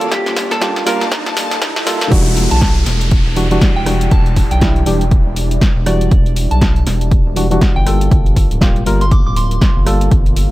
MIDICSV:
0, 0, Header, 1, 10, 480
1, 0, Start_track
1, 0, Key_signature, 1, "minor"
1, 0, Tempo, 500000
1, 110, Time_signature, 4, 2, 24, 8
1, 10094, End_track
2, 0, Start_track
2, 0, Title_t, "Synth bell"
2, 0, Program_c, 0, 98
2, 2412, Note_on_c, 0, 81, 90
2, 2475, Note_off_c, 0, 81, 0
2, 3613, Note_on_c, 0, 79, 92
2, 3931, Note_off_c, 0, 79, 0
2, 3953, Note_on_c, 0, 81, 93
2, 4104, Note_off_c, 0, 81, 0
2, 4333, Note_on_c, 0, 79, 87
2, 4812, Note_off_c, 0, 79, 0
2, 5630, Note_on_c, 0, 74, 96
2, 6012, Note_off_c, 0, 74, 0
2, 6250, Note_on_c, 0, 81, 91
2, 6314, Note_off_c, 0, 81, 0
2, 6348, Note_on_c, 0, 81, 79
2, 6440, Note_off_c, 0, 81, 0
2, 7451, Note_on_c, 0, 79, 94
2, 7606, Note_off_c, 0, 79, 0
2, 8653, Note_on_c, 0, 84, 84
2, 8731, Note_off_c, 0, 84, 0
2, 8751, Note_on_c, 0, 86, 87
2, 8841, Note_off_c, 0, 86, 0
2, 8895, Note_on_c, 0, 86, 76
2, 8956, Note_off_c, 0, 86, 0
2, 8993, Note_on_c, 0, 84, 91
2, 9471, Note_off_c, 0, 84, 0
2, 10094, End_track
3, 0, Start_track
3, 0, Title_t, "String section"
3, 0, Program_c, 1, 48
3, 0, Note_on_c, 1, 65, 83
3, 0, Note_on_c, 1, 74, 92
3, 41, Note_on_c, 1, 58, 88
3, 751, Note_off_c, 1, 74, 0
3, 845, Note_on_c, 1, 81, 94
3, 2030, Note_off_c, 1, 65, 0
3, 2031, Note_off_c, 1, 58, 0
3, 2031, Note_off_c, 1, 81, 0
3, 10094, End_track
4, 0, Start_track
4, 0, Title_t, "Hollow-body jazz guitar"
4, 0, Program_c, 2, 26
4, 115, Note_on_c, 2, 67, 103
4, 497, Note_on_c, 2, 69, 110
4, 506, Note_off_c, 2, 67, 0
4, 829, Note_off_c, 2, 69, 0
4, 833, Note_on_c, 2, 70, 95
4, 1055, Note_off_c, 2, 70, 0
4, 10094, End_track
5, 0, Start_track
5, 0, Title_t, "Ambient pad"
5, 0, Program_c, 3, 92
5, 0, Note_on_c, 3, 55, 86
5, 0, Note_on_c, 3, 58, 76
5, 0, Note_on_c, 3, 65, 78
5, 0, Note_on_c, 3, 69, 87
5, 2009, Note_off_c, 3, 69, 0
5, 2010, Note_off_c, 3, 55, 0
5, 2010, Note_off_c, 3, 58, 0
5, 2010, Note_off_c, 3, 65, 0
5, 2030, Note_on_c, 3, 55, 82
5, 2030, Note_on_c, 3, 62, 69
5, 2030, Note_on_c, 3, 64, 73
5, 2030, Note_on_c, 3, 74, 90
5, 7511, Note_off_c, 3, 64, 0
5, 7512, Note_off_c, 3, 62, 0
5, 7512, Note_off_c, 3, 74, 0
5, 7551, Note_on_c, 3, 65, 78
5, 7553, Note_on_c, 3, 58, 77
5, 10094, Note_off_c, 3, 55, 0
5, 10094, Note_off_c, 3, 58, 0
5, 10094, Note_off_c, 3, 65, 0
5, 10094, End_track
6, 0, Start_track
6, 0, Title_t, "Synth stab"
6, 0, Program_c, 4, 62
6, 0, Note_on_c, 4, 55, 74
6, 0, Note_on_c, 4, 58, 68
6, 0, Note_on_c, 4, 65, 73
6, 0, Note_on_c, 4, 69, 85
6, 561, Note_off_c, 4, 55, 0
6, 564, Note_off_c, 4, 58, 0
6, 568, Note_off_c, 4, 65, 0
6, 571, Note_off_c, 4, 69, 0
6, 585, Note_on_c, 4, 55, 103
6, 588, Note_on_c, 4, 58, 94
6, 592, Note_on_c, 4, 65, 95
6, 595, Note_on_c, 4, 67, 117
6, 798, Note_off_c, 4, 55, 0
6, 800, Note_off_c, 4, 58, 0
6, 802, Note_off_c, 4, 65, 0
6, 803, Note_off_c, 4, 67, 0
6, 824, Note_on_c, 4, 55, 97
6, 828, Note_on_c, 4, 58, 90
6, 831, Note_on_c, 4, 65, 88
6, 835, Note_on_c, 4, 70, 103
6, 1005, Note_off_c, 4, 55, 0
6, 1007, Note_off_c, 4, 58, 0
6, 1009, Note_off_c, 4, 65, 0
6, 1011, Note_off_c, 4, 70, 0
6, 1784, Note_on_c, 4, 55, 81
6, 1788, Note_on_c, 4, 58, 79
6, 1791, Note_on_c, 4, 65, 75
6, 1794, Note_on_c, 4, 69, 90
6, 2015, Note_off_c, 4, 55, 0
6, 2017, Note_off_c, 4, 58, 0
6, 2019, Note_off_c, 4, 65, 0
6, 2019, Note_on_c, 4, 52, 98
6, 2020, Note_off_c, 4, 69, 0
6, 2026, Note_on_c, 4, 55, 95
6, 2032, Note_on_c, 4, 62, 93
6, 2039, Note_on_c, 4, 66, 107
6, 2744, Note_off_c, 4, 52, 0
6, 2748, Note_off_c, 4, 55, 0
6, 2751, Note_off_c, 4, 62, 0
6, 2755, Note_off_c, 4, 66, 0
6, 3225, Note_on_c, 4, 52, 77
6, 3229, Note_on_c, 4, 55, 71
6, 3232, Note_on_c, 4, 62, 69
6, 3235, Note_on_c, 4, 66, 90
6, 3335, Note_off_c, 4, 52, 0
6, 3337, Note_off_c, 4, 55, 0
6, 3338, Note_off_c, 4, 62, 0
6, 3340, Note_off_c, 4, 66, 0
6, 3368, Note_on_c, 4, 52, 94
6, 3371, Note_on_c, 4, 55, 87
6, 3374, Note_on_c, 4, 62, 93
6, 3378, Note_on_c, 4, 66, 108
6, 3684, Note_off_c, 4, 52, 0
6, 3686, Note_off_c, 4, 55, 0
6, 3688, Note_off_c, 4, 62, 0
6, 3689, Note_off_c, 4, 66, 0
6, 3700, Note_on_c, 4, 52, 75
6, 3707, Note_on_c, 4, 55, 69
6, 3713, Note_on_c, 4, 62, 71
6, 3720, Note_on_c, 4, 66, 80
6, 4401, Note_off_c, 4, 52, 0
6, 4405, Note_off_c, 4, 55, 0
6, 4408, Note_off_c, 4, 62, 0
6, 4412, Note_off_c, 4, 66, 0
6, 4425, Note_on_c, 4, 52, 102
6, 4428, Note_on_c, 4, 55, 91
6, 4432, Note_on_c, 4, 62, 93
6, 4435, Note_on_c, 4, 64, 109
6, 4638, Note_off_c, 4, 52, 0
6, 4640, Note_off_c, 4, 55, 0
6, 4641, Note_off_c, 4, 62, 0
6, 4643, Note_off_c, 4, 64, 0
6, 4665, Note_on_c, 4, 52, 97
6, 4668, Note_on_c, 4, 55, 87
6, 4671, Note_on_c, 4, 62, 90
6, 4675, Note_on_c, 4, 67, 112
6, 4846, Note_off_c, 4, 52, 0
6, 4847, Note_off_c, 4, 55, 0
6, 4849, Note_off_c, 4, 62, 0
6, 4851, Note_off_c, 4, 67, 0
6, 5625, Note_on_c, 4, 52, 84
6, 5628, Note_on_c, 4, 55, 79
6, 5632, Note_on_c, 4, 62, 78
6, 5635, Note_on_c, 4, 66, 94
6, 5896, Note_off_c, 4, 52, 0
6, 5897, Note_off_c, 4, 55, 0
6, 5899, Note_off_c, 4, 62, 0
6, 5901, Note_off_c, 4, 66, 0
6, 7065, Note_on_c, 4, 52, 77
6, 7068, Note_on_c, 4, 55, 70
6, 7072, Note_on_c, 4, 62, 69
6, 7075, Note_on_c, 4, 66, 88
6, 7175, Note_off_c, 4, 52, 0
6, 7177, Note_off_c, 4, 55, 0
6, 7178, Note_off_c, 4, 62, 0
6, 7180, Note_off_c, 4, 66, 0
6, 7206, Note_on_c, 4, 52, 98
6, 7210, Note_on_c, 4, 55, 91
6, 7214, Note_on_c, 4, 62, 87
6, 7217, Note_on_c, 4, 66, 110
6, 7524, Note_off_c, 4, 52, 0
6, 7525, Note_off_c, 4, 55, 0
6, 7527, Note_off_c, 4, 62, 0
6, 7529, Note_off_c, 4, 66, 0
6, 7540, Note_on_c, 4, 55, 77
6, 7548, Note_on_c, 4, 58, 71
6, 7554, Note_on_c, 4, 65, 69
6, 7561, Note_on_c, 4, 69, 86
6, 8242, Note_off_c, 4, 55, 0
6, 8245, Note_off_c, 4, 58, 0
6, 8249, Note_off_c, 4, 65, 0
6, 8252, Note_off_c, 4, 69, 0
6, 8264, Note_on_c, 4, 55, 100
6, 8268, Note_on_c, 4, 58, 97
6, 8271, Note_on_c, 4, 65, 97
6, 8275, Note_on_c, 4, 67, 109
6, 8478, Note_off_c, 4, 55, 0
6, 8479, Note_off_c, 4, 58, 0
6, 8481, Note_off_c, 4, 65, 0
6, 8483, Note_off_c, 4, 67, 0
6, 8505, Note_on_c, 4, 55, 92
6, 8508, Note_on_c, 4, 58, 87
6, 8512, Note_on_c, 4, 65, 84
6, 8515, Note_on_c, 4, 70, 110
6, 8686, Note_off_c, 4, 55, 0
6, 8687, Note_off_c, 4, 58, 0
6, 8689, Note_off_c, 4, 65, 0
6, 8691, Note_off_c, 4, 70, 0
6, 9466, Note_on_c, 4, 55, 85
6, 9469, Note_on_c, 4, 58, 78
6, 9473, Note_on_c, 4, 65, 78
6, 9476, Note_on_c, 4, 69, 97
6, 9736, Note_off_c, 4, 55, 0
6, 9738, Note_off_c, 4, 58, 0
6, 9740, Note_off_c, 4, 65, 0
6, 9741, Note_off_c, 4, 69, 0
6, 10094, End_track
7, 0, Start_track
7, 0, Title_t, "Analog synth bass"
7, 0, Program_c, 5, 38
7, 2031, Note_on_c, 5, 28, 106
7, 2373, Note_off_c, 5, 28, 0
7, 2413, Note_on_c, 5, 35, 83
7, 2723, Note_off_c, 5, 35, 0
7, 2751, Note_on_c, 5, 28, 94
7, 3093, Note_off_c, 5, 28, 0
7, 3133, Note_on_c, 5, 28, 99
7, 3443, Note_off_c, 5, 28, 0
7, 3612, Note_on_c, 5, 28, 94
7, 3923, Note_off_c, 5, 28, 0
7, 3950, Note_on_c, 5, 28, 103
7, 4292, Note_off_c, 5, 28, 0
7, 4332, Note_on_c, 5, 35, 83
7, 4643, Note_off_c, 5, 35, 0
7, 4671, Note_on_c, 5, 28, 95
7, 5012, Note_off_c, 5, 28, 0
7, 5052, Note_on_c, 5, 28, 101
7, 5363, Note_off_c, 5, 28, 0
7, 5532, Note_on_c, 5, 28, 103
7, 5843, Note_off_c, 5, 28, 0
7, 5870, Note_on_c, 5, 28, 106
7, 6212, Note_off_c, 5, 28, 0
7, 6253, Note_on_c, 5, 35, 84
7, 6563, Note_off_c, 5, 35, 0
7, 6590, Note_on_c, 5, 28, 95
7, 6932, Note_off_c, 5, 28, 0
7, 6972, Note_on_c, 5, 28, 99
7, 7283, Note_off_c, 5, 28, 0
7, 7453, Note_on_c, 5, 31, 99
7, 7763, Note_off_c, 5, 31, 0
7, 7791, Note_on_c, 5, 31, 101
7, 8132, Note_off_c, 5, 31, 0
7, 8174, Note_on_c, 5, 26, 86
7, 8484, Note_off_c, 5, 26, 0
7, 8511, Note_on_c, 5, 31, 90
7, 8853, Note_off_c, 5, 31, 0
7, 8893, Note_on_c, 5, 26, 89
7, 9203, Note_off_c, 5, 26, 0
7, 9372, Note_on_c, 5, 31, 87
7, 9683, Note_off_c, 5, 31, 0
7, 9711, Note_on_c, 5, 31, 101
7, 10052, Note_off_c, 5, 31, 0
7, 10094, End_track
8, 0, Start_track
8, 0, Title_t, "Downlifter"
8, 0, Program_c, 6, 103
8, 2030, Note_on_c, 6, 60, 75
8, 5870, Note_off_c, 6, 60, 0
8, 10094, End_track
9, 0, Start_track
9, 0, Title_t, "Riser"
9, 0, Program_c, 7, 103
9, 0, Note_on_c, 7, 60, 76
9, 2030, Note_off_c, 7, 60, 0
9, 10094, End_track
10, 0, Start_track
10, 0, Title_t, "Drums"
10, 12, Note_on_c, 9, 42, 54
10, 108, Note_off_c, 9, 42, 0
10, 111, Note_on_c, 9, 36, 123
10, 111, Note_on_c, 9, 38, 94
10, 111, Note_on_c, 9, 42, 63
10, 207, Note_off_c, 9, 36, 0
10, 207, Note_off_c, 9, 38, 0
10, 207, Note_off_c, 9, 42, 0
10, 252, Note_on_c, 9, 38, 80
10, 252, Note_on_c, 9, 42, 35
10, 348, Note_off_c, 9, 38, 0
10, 348, Note_off_c, 9, 42, 0
10, 350, Note_on_c, 9, 38, 90
10, 350, Note_on_c, 9, 46, 107
10, 351, Note_on_c, 9, 36, 64
10, 446, Note_off_c, 9, 38, 0
10, 446, Note_off_c, 9, 46, 0
10, 447, Note_off_c, 9, 36, 0
10, 492, Note_on_c, 9, 38, 80
10, 492, Note_on_c, 9, 42, 47
10, 588, Note_off_c, 9, 38, 0
10, 588, Note_off_c, 9, 42, 0
10, 590, Note_on_c, 9, 36, 123
10, 590, Note_on_c, 9, 38, 96
10, 590, Note_on_c, 9, 42, 65
10, 686, Note_off_c, 9, 36, 0
10, 686, Note_off_c, 9, 38, 0
10, 686, Note_off_c, 9, 42, 0
10, 733, Note_on_c, 9, 38, 81
10, 733, Note_on_c, 9, 42, 35
10, 829, Note_off_c, 9, 38, 0
10, 829, Note_off_c, 9, 42, 0
10, 831, Note_on_c, 9, 38, 96
10, 831, Note_on_c, 9, 46, 107
10, 927, Note_off_c, 9, 38, 0
10, 927, Note_off_c, 9, 46, 0
10, 973, Note_on_c, 9, 38, 89
10, 973, Note_on_c, 9, 42, 49
10, 1069, Note_off_c, 9, 38, 0
10, 1069, Note_off_c, 9, 42, 0
10, 1070, Note_on_c, 9, 36, 127
10, 1072, Note_on_c, 9, 38, 102
10, 1072, Note_on_c, 9, 42, 63
10, 1166, Note_off_c, 9, 36, 0
10, 1168, Note_off_c, 9, 38, 0
10, 1168, Note_off_c, 9, 42, 0
10, 1214, Note_on_c, 9, 38, 86
10, 1214, Note_on_c, 9, 42, 33
10, 1310, Note_off_c, 9, 38, 0
10, 1310, Note_off_c, 9, 42, 0
10, 1312, Note_on_c, 9, 38, 105
10, 1312, Note_on_c, 9, 46, 112
10, 1408, Note_off_c, 9, 38, 0
10, 1408, Note_off_c, 9, 46, 0
10, 1454, Note_on_c, 9, 38, 91
10, 1454, Note_on_c, 9, 42, 51
10, 1550, Note_off_c, 9, 38, 0
10, 1550, Note_off_c, 9, 42, 0
10, 1551, Note_on_c, 9, 36, 120
10, 1551, Note_on_c, 9, 38, 106
10, 1551, Note_on_c, 9, 42, 65
10, 1647, Note_off_c, 9, 36, 0
10, 1647, Note_off_c, 9, 38, 0
10, 1647, Note_off_c, 9, 42, 0
10, 1693, Note_on_c, 9, 38, 98
10, 1789, Note_off_c, 9, 38, 0
10, 1792, Note_on_c, 9, 38, 104
10, 1792, Note_on_c, 9, 46, 105
10, 1888, Note_off_c, 9, 38, 0
10, 1888, Note_off_c, 9, 46, 0
10, 1933, Note_on_c, 9, 38, 103
10, 1933, Note_on_c, 9, 42, 53
10, 2029, Note_off_c, 9, 38, 0
10, 2029, Note_off_c, 9, 42, 0
10, 2031, Note_on_c, 9, 36, 119
10, 2032, Note_on_c, 9, 42, 69
10, 2127, Note_off_c, 9, 36, 0
10, 2128, Note_off_c, 9, 42, 0
10, 2173, Note_on_c, 9, 42, 39
10, 2269, Note_off_c, 9, 42, 0
10, 2270, Note_on_c, 9, 46, 99
10, 2366, Note_off_c, 9, 46, 0
10, 2412, Note_on_c, 9, 42, 53
10, 2508, Note_off_c, 9, 42, 0
10, 2509, Note_on_c, 9, 42, 67
10, 2511, Note_on_c, 9, 36, 119
10, 2512, Note_on_c, 9, 38, 124
10, 2605, Note_off_c, 9, 42, 0
10, 2607, Note_off_c, 9, 36, 0
10, 2608, Note_off_c, 9, 38, 0
10, 2651, Note_on_c, 9, 42, 37
10, 2747, Note_off_c, 9, 42, 0
10, 2748, Note_on_c, 9, 46, 102
10, 2751, Note_on_c, 9, 38, 64
10, 2844, Note_off_c, 9, 46, 0
10, 2847, Note_off_c, 9, 38, 0
10, 2891, Note_on_c, 9, 42, 56
10, 2987, Note_off_c, 9, 42, 0
10, 2989, Note_on_c, 9, 42, 69
10, 2991, Note_on_c, 9, 36, 124
10, 3085, Note_off_c, 9, 42, 0
10, 3087, Note_off_c, 9, 36, 0
10, 3230, Note_on_c, 9, 46, 104
10, 3326, Note_off_c, 9, 46, 0
10, 3371, Note_on_c, 9, 42, 54
10, 3467, Note_off_c, 9, 42, 0
10, 3470, Note_on_c, 9, 36, 117
10, 3470, Note_on_c, 9, 42, 67
10, 3472, Note_on_c, 9, 38, 121
10, 3566, Note_off_c, 9, 36, 0
10, 3566, Note_off_c, 9, 42, 0
10, 3568, Note_off_c, 9, 38, 0
10, 3709, Note_on_c, 9, 37, 79
10, 3709, Note_on_c, 9, 46, 104
10, 3805, Note_off_c, 9, 37, 0
10, 3805, Note_off_c, 9, 46, 0
10, 3851, Note_on_c, 9, 42, 58
10, 3947, Note_off_c, 9, 42, 0
10, 3949, Note_on_c, 9, 42, 64
10, 3950, Note_on_c, 9, 36, 125
10, 4045, Note_off_c, 9, 42, 0
10, 4046, Note_off_c, 9, 36, 0
10, 4091, Note_on_c, 9, 42, 39
10, 4187, Note_off_c, 9, 42, 0
10, 4190, Note_on_c, 9, 36, 63
10, 4190, Note_on_c, 9, 46, 104
10, 4286, Note_off_c, 9, 36, 0
10, 4286, Note_off_c, 9, 46, 0
10, 4331, Note_on_c, 9, 42, 55
10, 4427, Note_off_c, 9, 42, 0
10, 4429, Note_on_c, 9, 42, 72
10, 4430, Note_on_c, 9, 36, 122
10, 4432, Note_on_c, 9, 38, 127
10, 4525, Note_off_c, 9, 42, 0
10, 4526, Note_off_c, 9, 36, 0
10, 4528, Note_off_c, 9, 38, 0
10, 4571, Note_on_c, 9, 42, 35
10, 4667, Note_off_c, 9, 42, 0
10, 4668, Note_on_c, 9, 46, 111
10, 4764, Note_off_c, 9, 46, 0
10, 4811, Note_on_c, 9, 42, 54
10, 4907, Note_off_c, 9, 42, 0
10, 4909, Note_on_c, 9, 42, 65
10, 4910, Note_on_c, 9, 36, 127
10, 5005, Note_off_c, 9, 42, 0
10, 5006, Note_off_c, 9, 36, 0
10, 5150, Note_on_c, 9, 46, 110
10, 5246, Note_off_c, 9, 46, 0
10, 5292, Note_on_c, 9, 42, 54
10, 5388, Note_off_c, 9, 42, 0
10, 5390, Note_on_c, 9, 36, 117
10, 5390, Note_on_c, 9, 42, 68
10, 5393, Note_on_c, 9, 38, 121
10, 5486, Note_off_c, 9, 36, 0
10, 5486, Note_off_c, 9, 42, 0
10, 5489, Note_off_c, 9, 38, 0
10, 5629, Note_on_c, 9, 37, 74
10, 5629, Note_on_c, 9, 46, 104
10, 5725, Note_off_c, 9, 37, 0
10, 5725, Note_off_c, 9, 46, 0
10, 5771, Note_on_c, 9, 42, 53
10, 5867, Note_off_c, 9, 42, 0
10, 5870, Note_on_c, 9, 36, 123
10, 5870, Note_on_c, 9, 42, 67
10, 5966, Note_off_c, 9, 36, 0
10, 5966, Note_off_c, 9, 42, 0
10, 6012, Note_on_c, 9, 42, 37
10, 6108, Note_off_c, 9, 42, 0
10, 6109, Note_on_c, 9, 46, 107
10, 6205, Note_off_c, 9, 46, 0
10, 6251, Note_on_c, 9, 42, 50
10, 6347, Note_off_c, 9, 42, 0
10, 6350, Note_on_c, 9, 36, 122
10, 6350, Note_on_c, 9, 42, 67
10, 6352, Note_on_c, 9, 38, 122
10, 6446, Note_off_c, 9, 36, 0
10, 6446, Note_off_c, 9, 42, 0
10, 6448, Note_off_c, 9, 38, 0
10, 6491, Note_on_c, 9, 42, 36
10, 6587, Note_off_c, 9, 42, 0
10, 6591, Note_on_c, 9, 46, 106
10, 6594, Note_on_c, 9, 38, 59
10, 6687, Note_off_c, 9, 46, 0
10, 6690, Note_off_c, 9, 38, 0
10, 6732, Note_on_c, 9, 42, 50
10, 6828, Note_off_c, 9, 42, 0
10, 6830, Note_on_c, 9, 36, 127
10, 6830, Note_on_c, 9, 42, 64
10, 6926, Note_off_c, 9, 36, 0
10, 6926, Note_off_c, 9, 42, 0
10, 7070, Note_on_c, 9, 46, 116
10, 7166, Note_off_c, 9, 46, 0
10, 7212, Note_on_c, 9, 42, 53
10, 7308, Note_off_c, 9, 42, 0
10, 7310, Note_on_c, 9, 36, 122
10, 7310, Note_on_c, 9, 42, 64
10, 7313, Note_on_c, 9, 38, 114
10, 7406, Note_off_c, 9, 36, 0
10, 7406, Note_off_c, 9, 42, 0
10, 7409, Note_off_c, 9, 38, 0
10, 7551, Note_on_c, 9, 37, 72
10, 7551, Note_on_c, 9, 46, 109
10, 7647, Note_off_c, 9, 37, 0
10, 7647, Note_off_c, 9, 46, 0
10, 7692, Note_on_c, 9, 42, 55
10, 7788, Note_off_c, 9, 42, 0
10, 7790, Note_on_c, 9, 36, 126
10, 7790, Note_on_c, 9, 42, 61
10, 7886, Note_off_c, 9, 36, 0
10, 7886, Note_off_c, 9, 42, 0
10, 7932, Note_on_c, 9, 42, 35
10, 8028, Note_off_c, 9, 42, 0
10, 8030, Note_on_c, 9, 36, 64
10, 8031, Note_on_c, 9, 46, 112
10, 8126, Note_off_c, 9, 36, 0
10, 8127, Note_off_c, 9, 46, 0
10, 8172, Note_on_c, 9, 42, 48
10, 8268, Note_off_c, 9, 42, 0
10, 8270, Note_on_c, 9, 36, 124
10, 8270, Note_on_c, 9, 42, 64
10, 8273, Note_on_c, 9, 38, 122
10, 8366, Note_off_c, 9, 36, 0
10, 8366, Note_off_c, 9, 42, 0
10, 8369, Note_off_c, 9, 38, 0
10, 8411, Note_on_c, 9, 42, 33
10, 8507, Note_off_c, 9, 42, 0
10, 8510, Note_on_c, 9, 46, 106
10, 8606, Note_off_c, 9, 46, 0
10, 8652, Note_on_c, 9, 42, 49
10, 8748, Note_off_c, 9, 42, 0
10, 8750, Note_on_c, 9, 36, 119
10, 8750, Note_on_c, 9, 42, 63
10, 8846, Note_off_c, 9, 36, 0
10, 8846, Note_off_c, 9, 42, 0
10, 8990, Note_on_c, 9, 46, 106
10, 9086, Note_off_c, 9, 46, 0
10, 9132, Note_on_c, 9, 42, 49
10, 9228, Note_off_c, 9, 42, 0
10, 9230, Note_on_c, 9, 36, 121
10, 9230, Note_on_c, 9, 42, 62
10, 9233, Note_on_c, 9, 38, 116
10, 9326, Note_off_c, 9, 36, 0
10, 9326, Note_off_c, 9, 42, 0
10, 9329, Note_off_c, 9, 38, 0
10, 9470, Note_on_c, 9, 37, 79
10, 9470, Note_on_c, 9, 46, 105
10, 9566, Note_off_c, 9, 37, 0
10, 9566, Note_off_c, 9, 46, 0
10, 9612, Note_on_c, 9, 42, 53
10, 9708, Note_off_c, 9, 42, 0
10, 9710, Note_on_c, 9, 36, 115
10, 9710, Note_on_c, 9, 42, 67
10, 9806, Note_off_c, 9, 36, 0
10, 9806, Note_off_c, 9, 42, 0
10, 9852, Note_on_c, 9, 42, 36
10, 9948, Note_off_c, 9, 42, 0
10, 9950, Note_on_c, 9, 46, 106
10, 10046, Note_off_c, 9, 46, 0
10, 10094, End_track
0, 0, End_of_file